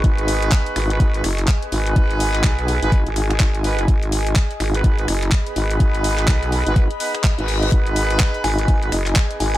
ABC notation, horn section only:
X:1
M:4/4
L:1/16
Q:"Swing 16ths" 1/4=125
K:G#m
V:1 name="Horn section"
[B,DGB]6- [B,DGB] [B,DGB]2 [B,DGB] z3 [B,DGB]3- | [B,DGB]6- [B,DGB] [B,DGB]2 z4 z [B,DGB]2 | z6 z [B,DGB]2 [B,DGB] z3 [B,DGB]3- | [B,DGB]6- [B,DGB] [B,DGB]2 z [B,DGB] z2 [B,DGB]2 [B,DGB]- |
[B,DGB]6- [B,DGB] [B,DGB]2 [B,DGB] z3 [B,DGB]3 |]